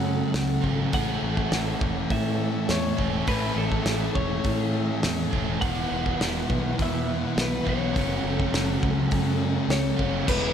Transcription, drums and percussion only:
0.34 snare, open hi-hat
0.64 kick
0.93 kick, open hi-hat
1.37 kick
1.52 snare, open hi-hat
1.81 kick
2.10 kick, open hi-hat
2.69 snare, open hi-hat
2.99 kick
3.27 kick, open hi-hat
3.72 kick
3.86 snare, open hi-hat
4.15 kick
4.44 kick, open hi-hat
5.03 snare, open hi-hat
5.33 kick
5.61 kick, open hi-hat
6.06 kick
6.21 snare, open hi-hat
6.50 kick
6.79 kick, open hi-hat
7.38 snare, open hi-hat
7.67 kick
7.96 kick, open hi-hat
8.40 kick
8.54 snare, open hi-hat
8.83 kick
9.11 kick, open hi-hat
9.70 snare, open hi-hat
9.99 kick
10.28 kick, crash

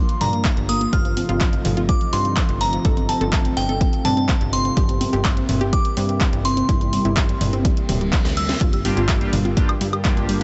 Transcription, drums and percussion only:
0.09 closed hi-hat
0.21 mid tom, open hi-hat
0.33 closed hi-hat
0.45 kick, clap, closed hi-hat
0.57 closed hi-hat
0.69 open hi-hat
0.81 closed hi-hat
0.93 kick, closed hi-hat
1.05 closed hi-hat
1.17 open hi-hat, high conga
1.29 closed hi-hat, high conga
1.41 kick, clap, closed hi-hat
1.53 closed hi-hat
1.65 mid tom, open hi-hat
1.77 closed hi-hat, high conga
1.89 kick, closed hi-hat
2.01 closed hi-hat
2.13 open hi-hat
2.25 closed hi-hat
2.37 kick, clap, closed hi-hat
2.49 closed hi-hat
2.61 open hi-hat
2.73 closed hi-hat
2.85 kick, closed hi-hat
2.97 closed hi-hat
3.09 open hi-hat, high conga
3.21 closed hi-hat, high conga
3.33 kick, clap, closed hi-hat
3.45 closed hi-hat
3.57 open hi-hat
3.69 closed hi-hat, high conga
3.81 kick, closed hi-hat
3.93 closed hi-hat
4.05 mid tom, open hi-hat
4.17 closed hi-hat
4.29 kick, clap, closed hi-hat
4.41 closed hi-hat
4.53 open hi-hat
4.65 closed hi-hat
4.77 kick, closed hi-hat
4.89 closed hi-hat
5.01 open hi-hat, high conga
5.13 closed hi-hat, high conga
5.25 kick, clap, closed hi-hat
5.37 closed hi-hat
5.49 mid tom, open hi-hat
5.61 closed hi-hat, high conga
5.73 kick, closed hi-hat
5.85 closed hi-hat
5.97 open hi-hat
6.09 closed hi-hat
6.21 kick, clap, closed hi-hat
6.33 closed hi-hat
6.45 open hi-hat
6.57 closed hi-hat
6.69 kick, closed hi-hat
6.81 closed hi-hat
6.93 open hi-hat, high conga
7.05 closed hi-hat, high conga
7.17 kick, clap, closed hi-hat
7.29 closed hi-hat
7.41 mid tom, open hi-hat
7.53 closed hi-hat, high conga
7.65 kick, closed hi-hat
7.77 closed hi-hat
7.89 mid tom, open hi-hat
8.01 closed hi-hat
8.13 kick, clap, closed hi-hat
8.25 snare, closed hi-hat
8.37 open hi-hat
8.49 snare, closed hi-hat
8.61 kick, closed hi-hat
8.73 closed hi-hat
8.85 open hi-hat, high conga
8.97 closed hi-hat, high conga
9.09 kick, clap, closed hi-hat
9.21 closed hi-hat
9.33 mid tom, open hi-hat
9.45 closed hi-hat, high conga
9.57 kick, closed hi-hat
9.69 closed hi-hat, high woodblock
9.81 open hi-hat
9.93 closed hi-hat, high woodblock
10.05 kick, clap, closed hi-hat
10.17 closed hi-hat
10.29 open hi-hat

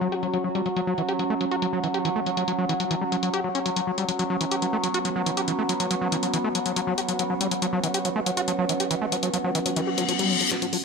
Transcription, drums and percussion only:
0.12 closed hi-hat
0.23 closed hi-hat
0.34 closed hi-hat
0.55 closed hi-hat
0.66 closed hi-hat
0.76 closed hi-hat
0.98 closed hi-hat
1.09 closed hi-hat
1.19 closed hi-hat
1.41 closed hi-hat
1.51 closed hi-hat
1.62 closed hi-hat
1.84 closed hi-hat
1.94 closed hi-hat
2.05 closed hi-hat
2.26 closed hi-hat
2.37 closed hi-hat
2.48 closed hi-hat
2.69 closed hi-hat
2.80 closed hi-hat
2.91 closed hi-hat
3.12 closed hi-hat
3.23 closed hi-hat
3.34 closed hi-hat
3.55 closed hi-hat
3.66 closed hi-hat
3.76 closed hi-hat
3.98 closed hi-hat
4.09 closed hi-hat
4.19 closed hi-hat
4.41 closed hi-hat
4.51 closed hi-hat
4.62 closed hi-hat
4.84 closed hi-hat
4.94 closed hi-hat
5.05 closed hi-hat
5.26 closed hi-hat
5.37 closed hi-hat
5.48 closed hi-hat
5.69 closed hi-hat
5.80 closed hi-hat
5.91 closed hi-hat
6.12 closed hi-hat
6.23 closed hi-hat
6.34 closed hi-hat
6.55 closed hi-hat
6.66 closed hi-hat
6.76 closed hi-hat
6.98 closed hi-hat
7.09 closed hi-hat
7.19 closed hi-hat
7.41 closed hi-hat
7.51 closed hi-hat
7.62 closed hi-hat
7.84 closed hi-hat
7.94 closed hi-hat
8.05 closed hi-hat
8.26 closed hi-hat
8.37 closed hi-hat
8.48 closed hi-hat
8.69 closed hi-hat
8.80 closed hi-hat
8.91 closed hi-hat
9.12 closed hi-hat
9.23 closed hi-hat
9.34 closed hi-hat
9.55 closed hi-hat
9.66 closed hi-hat
9.76 closed hi-hat
9.98 closed hi-hat
10.09 closed hi-hat
10.19 closed hi-hat
10.41 closed hi-hat
10.51 cross-stick, snare, closed hi-hat
10.62 closed hi-hat
10.73 open hi-hat

